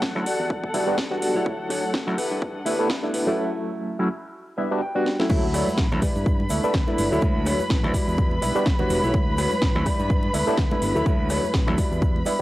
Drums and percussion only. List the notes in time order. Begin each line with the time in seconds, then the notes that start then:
0.02 kick, snare
0.26 open hi-hat
0.50 kick
0.64 kick
0.74 open hi-hat
0.98 kick, snare
1.22 open hi-hat
1.46 kick
1.70 cross-stick, open hi-hat
1.94 kick, snare
2.18 cross-stick, open hi-hat
2.42 kick
2.66 open hi-hat
2.90 kick, snare
3.14 open hi-hat
5.06 snare
5.20 snare
5.30 kick, crash, high conga, shaker
5.54 cross-stick, open hi-hat, shaker
5.67 high conga, shaker
5.78 kick, snare, shaker
5.92 low conga
6.02 kick, cross-stick, open hi-hat, high conga, shaker
6.16 shaker
6.26 kick, shaker
6.40 high conga
6.49 open hi-hat, shaker
6.63 shaker
6.74 kick, snare, shaker
6.88 high conga
6.98 open hi-hat, shaker
7.12 shaker
7.22 kick, high conga, shaker
7.46 cross-stick, open hi-hat, shaker
7.59 high conga, shaker
7.70 kick, snare, shaker
7.84 low conga
7.94 kick, open hi-hat, high conga, shaker
8.08 shaker
8.17 kick, shaker
8.31 high conga
8.42 open hi-hat, shaker
8.55 shaker
8.66 kick, snare, shaker
8.79 high conga, low conga
8.90 open hi-hat, shaker
9.03 shaker
9.13 kick, high conga, shaker
9.38 cross-stick, open hi-hat, shaker
9.51 high conga, shaker
9.61 kick, snare, shaker
9.75 low conga
9.86 kick, cross-stick, open hi-hat, high conga, shaker
9.99 shaker
10.10 kick, shaker
10.23 high conga
10.34 open hi-hat, shaker
10.47 shaker
10.58 kick, snare, shaker
10.71 high conga
10.82 open hi-hat, shaker
10.96 shaker
11.06 kick, high conga, shaker
11.30 cross-stick, open hi-hat, shaker
11.44 high conga, shaker
11.54 kick, snare, shaker
11.68 low conga
11.78 kick, open hi-hat, high conga, shaker
11.92 shaker
12.02 kick, shaker
12.16 high conga
12.25 open hi-hat, shaker